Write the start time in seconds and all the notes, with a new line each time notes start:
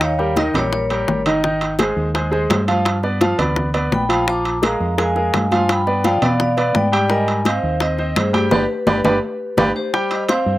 Already playing: D#2 D#3 D#4 D#5
0.01 C#5 F5, high bongo, high timbale
0.19 G3 G4 A#4, high bongo, high conga
0.36 D#3 D#4 A#4 D#5, high bongo, high conga, high timbale
0.54 A#1 G3 G4 A#4 C#5, low conga, high timbale
0.72 A#4 C#5, high bongo, high conga
0.90 G3 G4 A#4, high bongo, high conga, high timbale
1.08 G#1, high bongo, low bongo, high conga
1.26 D#3 D#4 D#5, high timbale
1.44 D#3 D#4 D#5, high bongo, high conga
1.61 high bongo, high conga, high timbale
1.79 G#3 G#4 C5, high bongo, high conga, high timbale
1.96 D#2, high conga
2.14 G#3 G#4 C5, high bongo, high conga, high timbale
2.31 G#3 G#4 C5, high bongo, high conga
2.50 G2, high bongo, low bongo, high conga, high timbale, low timbale
2.68 F3 F4 F5, high bongo, high conga, high timbale
2.85 high bongo, high timbale
3.03 B3 B4 D5, high bongo, high conga
3.21 F3 F4 F5, high bongo, high conga, high timbale
3.38 D2 B3 B4 D5, low conga, high timbale
3.56 high bongo, high conga, low conga
3.74 B3 B4 D5, high bongo, high conga, high timbale
3.91 A#1 G5 B5, high bongo, low bongo, high conga
4.09 F3 F4 F5, high timbale
4.27 F3 F4 F5 A#5 D6, high bongo, high conga
4.45 high bongo, high conga, high timbale
4.62 G#3 G#4 A#4 F5 A#5, high bongo, high conga, high timbale
4.80 F2, high conga
4.98 G#3 G#4 A#4 F5 G#5, high bongo, high conga, high timbale
5.16 G#3 G#4 A#4, high bongo, high conga
5.34 G2, high bongo, low bongo, high conga, high timbale, low timbale
5.51 F3 F4 F5 G#5 C6, high bongo, high conga, high timbale
5.69 G5 B5, high bongo, high conga, high timbale
5.87 B3 B4 D5, high bongo, high conga
6.04 F3 F4 D5 F5 G5, high bongo, high conga, high timbale
6.22 B2 B3 B4 D5 F5, low conga, high timbale
6.40 D5 F5, high bongo, high conga, low conga
6.57 B3 B4 D5, high bongo, high conga, high timbale
6.75 G#2 D5 G5, high bongo, low bongo, high conga
6.92 G3 G4 G5, high timbale
7.10 G3 A#4 D#5 G#5, high bongo, high conga
7.28 high bongo, high conga, high timbale
7.45 C4 C5 D#5 F5, high bongo, high conga, high timbale
7.63 D#2, high conga
7.80 C4 C5 D#5, high bongo, high conga, high timbale
7.98 C4 C5 D#5, high bongo, high conga
8.16 G2 G#4 C5, high bongo, low bongo, high conga, high timbale
8.33 G3 G4 G5, high bongo, high conga, high timbale
8.51 G1 G4 B4 D5, low bongo, high conga, high timbale
8.87 G1 G4 B4 D5, low bongo, high conga, high timbale
9.04 G1 G4 B4 D5, low bongo, high conga, high timbale
9.57 G1 G4 B4 D5, low bongo, high conga, high timbale
9.76 G4 C5
9.93 G3 G4 G5, high bongo, high conga
10.11 C5 D#5, high bongo, high conga, high timbale
10.29 C4 C5 F5 C6, high bongo, high conga, high timbale
10.46 G2, high conga